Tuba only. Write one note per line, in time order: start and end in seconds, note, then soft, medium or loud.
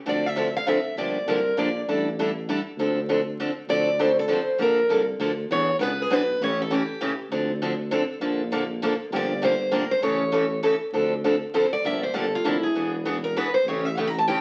0.05 0.57 D2 medium
0.95 1.20 G1 medium
1.25 1.52 C2 medium
1.56 1.82 A#1 medium
1.86 2.59 A1 medium
2.76 3.49 D2 medium
3.67 4.40 D2 medium
4.58 4.83 A#1 medium
4.88 5.14 C2 medium
5.18 5.44 D2 medium
5.49 5.73 E2 medium
5.79 6.05 C#2 medium
6.09 6.35 B1 medium
6.39 6.91 A1 medium
7.30 8.02 D2 medium
8.20 8.93 A#1 medium
9.10 9.83 G1 medium
10.01 10.74 A1 medium
10.92 11.44 D2 medium
11.83 12.07 G1 medium
12.14 12.39 G1 medium
12.43 12.69 F1 medium
12.74 13.47 E1 medium
13.65 14.38 A1 loud